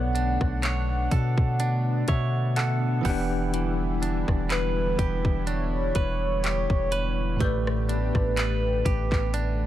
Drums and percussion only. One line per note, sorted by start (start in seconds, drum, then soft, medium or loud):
0.15 closed hi-hat medium
0.41 kick medium
0.41 cross-stick medium
0.63 clap loud
0.63 closed hi-hat medium
1.11 kick medium
1.11 closed hi-hat medium
1.38 kick loud
1.60 closed hi-hat medium
2.08 kick medium
2.08 closed hi-hat medium
2.56 clap loud
2.56 closed hi-hat medium
3.05 kick loud
3.05 open hi-hat medium
3.54 closed hi-hat medium
4.03 closed hi-hat medium
4.28 kick medium
4.28 cross-stick medium
4.50 clap loud
4.50 closed hi-hat medium
4.99 kick medium
4.99 closed hi-hat medium
5.25 kick loud
5.47 closed hi-hat medium
5.95 kick medium
5.95 closed hi-hat medium
6.44 clap loud
6.44 closed hi-hat medium
6.70 kick medium
6.92 closed hi-hat medium
7.40 kick loud
7.40 closed hi-hat medium
7.67 cross-stick loud
7.89 closed hi-hat medium
8.15 kick medium
8.15 cross-stick medium
8.37 clap loud
8.37 closed hi-hat medium
8.86 kick medium
8.86 closed hi-hat medium
9.12 kick loud
9.12 clap medium
9.34 closed hi-hat medium